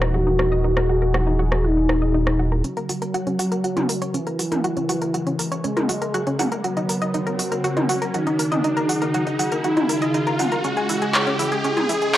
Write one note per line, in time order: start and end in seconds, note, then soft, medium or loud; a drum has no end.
0.00 2.62 D#1 medium
0.00 2.60 E3 medium
0.00 2.60 D#4 medium
0.00 2.60 F#4 medium
0.00 0.62 A#4 medium
0.00 0.14 A#4 medium
0.00 cross-stick medium
0.14 1.66 F#4 loud
0.14 0.26 F#4 medium
0.27 0.35 D#4 medium
0.39 0.48 A#4 medium
0.39 cross-stick soft
0.52 0.60 D#5 medium
0.64 0.73 D#4 medium
0.64 2.62 G#4 medium
0.77 0.85 A#4 medium
0.77 cross-stick soft
0.89 1.01 F#4 medium
1.02 1.10 A#4 medium
1.14 1.23 F#4 loud
1.14 cross-stick soft
1.27 1.39 D#4 medium
1.39 1.44 F#4 medium
1.52 1.64 A#4 medium
1.52 cross-stick soft
1.64 2.54 D#4 medium
1.64 1.76 F#4 medium
1.77 1.85 D#4 medium
1.89 1.98 A#4 medium
1.89 cross-stick soft
2.02 2.10 D#5 medium
2.14 2.23 D#4 medium
2.27 2.35 A#4 medium
2.27 cross-stick soft
2.39 2.51 F#4 medium
2.52 2.60 A#4 medium
2.64 12.17 C#3 medium
2.64 4.16 F#3 loud
2.64 2.73 C#4 medium
2.64 4.16 F#4 loud
2.64 6.60 F#4 medium
2.64 6.60 A#4 medium
2.64 closed hi-hat soft
2.64 riser medium
2.77 2.85 A#4 medium
2.77 closed hi-hat soft
2.89 3.01 F#4 medium
2.89 open hi-hat loud
3.02 3.10 A#4 medium
3.02 closed hi-hat soft
3.14 3.23 F#4 loud
3.14 closed hi-hat soft
3.27 3.39 C#4 medium
3.27 closed hi-hat soft
3.39 3.44 F#4 loud
3.39 open hi-hat loud
3.52 3.64 A#4 medium
3.52 closed hi-hat soft
3.64 3.76 F#4 medium
3.64 closed hi-hat soft
3.77 3.85 C#4 medium
3.77 closed hi-hat soft
3.77 mid tom medium
3.89 3.98 A#4 medium
3.89 open hi-hat loud
4.02 4.10 C#5 medium
4.02 closed hi-hat soft
4.14 5.54 E3 loud
4.14 4.23 C#4 medium
4.14 5.54 E4 loud
4.14 closed hi-hat soft
4.27 4.35 A#4 medium
4.27 closed hi-hat soft
4.39 4.51 F#4 medium
4.39 open hi-hat loud
4.52 4.60 A#4 medium
4.52 closed hi-hat soft
4.52 mid tom medium
4.64 4.73 F#4 loud
4.64 closed hi-hat soft
4.77 4.89 C#4 medium
4.77 closed hi-hat soft
4.89 4.94 F#4 loud
4.89 open hi-hat loud
5.02 5.14 A#4 medium
5.02 closed hi-hat soft
5.14 5.26 F#4 medium
5.14 closed hi-hat soft
5.27 5.35 C#4 medium
5.27 closed hi-hat soft
5.39 5.48 A#4 medium
5.39 open hi-hat loud
5.52 5.60 C#5 medium
5.52 closed hi-hat soft
5.64 6.54 G#3 loud
5.64 5.73 C#4 medium
5.64 6.54 G#4 medium
5.64 closed hi-hat soft
5.77 5.85 A#4 medium
5.77 closed hi-hat soft
5.77 mid tom medium
5.89 6.01 F#4 medium
5.89 open hi-hat loud
6.02 6.10 A#4 medium
6.02 closed hi-hat soft
6.14 6.23 F#4 loud
6.14 closed hi-hat soft
6.27 6.39 C#4 medium
6.27 closed hi-hat soft
6.39 6.44 F#4 loud
6.39 open hi-hat loud
6.39 mid tom medium
6.52 6.64 A#4 medium
6.52 closed hi-hat soft
6.64 8.04 F#3 loud
6.64 8.04 F#4 loud
6.64 10.60 F#4 medium
6.64 6.76 F#4 medium
6.64 8.62 A#4 medium
6.64 closed hi-hat soft
6.77 6.85 D#4 medium
6.77 closed hi-hat soft
6.89 6.98 A#4 medium
6.89 open hi-hat loud
7.02 7.10 D#5 medium
7.02 closed hi-hat soft
7.14 7.23 D#4 medium
7.14 closed hi-hat soft
7.27 7.35 A#4 medium
7.27 closed hi-hat soft
7.39 7.51 F#4 medium
7.39 open hi-hat loud
7.52 7.60 A#4 medium
7.52 closed hi-hat soft
7.64 7.73 F#4 loud
7.64 closed hi-hat soft
7.77 7.89 D#4 medium
7.77 closed hi-hat soft
7.77 mid tom medium
7.89 7.94 F#4 loud
7.89 open hi-hat loud
8.02 8.14 A#4 medium
8.02 closed hi-hat soft
8.14 9.54 D#3 loud
8.14 9.54 D#4 loud
8.14 8.26 F#4 medium
8.14 closed hi-hat soft
8.27 8.35 D#4 medium
8.27 closed hi-hat soft
8.39 8.48 A#4 medium
8.39 open hi-hat loud
8.52 8.60 D#5 medium
8.52 closed hi-hat soft
8.52 mid tom medium
8.64 8.73 D#4 medium
8.64 10.62 G#4 loud
8.64 closed hi-hat soft
8.77 8.85 A#4 medium
8.77 closed hi-hat soft
8.89 9.01 F#4 medium
8.89 open hi-hat loud
9.02 9.10 A#4 medium
9.02 closed hi-hat soft
9.14 9.23 F#4 loud
9.14 closed hi-hat soft
9.27 9.39 D#4 medium
9.27 closed hi-hat soft
9.39 9.44 F#4 loud
9.39 open hi-hat loud
9.52 9.64 A#4 medium
9.52 closed hi-hat soft
9.64 10.54 D#3 loud
9.64 10.54 D#4 loud
9.64 9.76 F#4 medium
9.64 closed hi-hat soft
9.77 9.85 D#4 medium
9.77 closed hi-hat soft
9.77 mid tom medium
9.89 9.98 A#4 medium
9.89 open hi-hat loud
10.02 10.10 D#5 medium
10.02 closed hi-hat soft
10.14 10.23 D#4 medium
10.14 closed hi-hat soft
10.27 10.35 A#4 medium
10.27 closed hi-hat soft
10.39 10.51 F#4 medium
10.39 open hi-hat loud
10.39 mid tom medium
10.52 10.60 A#4 medium
10.52 closed hi-hat soft
10.64 11.62 G#3 loud
10.64 12.17 C#4 medium
10.64 10.73 C#4 medium
10.64 12.17 E4 loud
10.64 11.62 G#4 loud
10.64 closed hi-hat soft
10.77 10.85 G#4 medium
10.77 closed hi-hat soft
10.89 11.01 E4 medium
10.89 open hi-hat loud
11.02 11.10 G#4 medium
11.02 closed hi-hat soft
11.14 11.23 C#5 medium
11.14 clap loud
11.14 closed hi-hat soft
11.27 11.39 C#4 medium
11.27 closed hi-hat soft
11.39 11.44 E4 medium
11.39 open hi-hat loud
11.52 11.62 G#4 medium
11.52 closed hi-hat soft
11.64 12.17 G#3 loud
11.64 11.73 C#4 medium
11.64 12.17 G#4 loud
11.64 closed hi-hat soft
11.77 11.85 G#4 medium
11.77 closed hi-hat soft
11.77 mid tom medium
11.89 12.01 E4 medium
11.89 open hi-hat loud
12.02 12.10 G#4 medium
12.02 closed hi-hat soft
12.14 12.17 C#5 medium
12.14 clap loud
12.14 closed hi-hat soft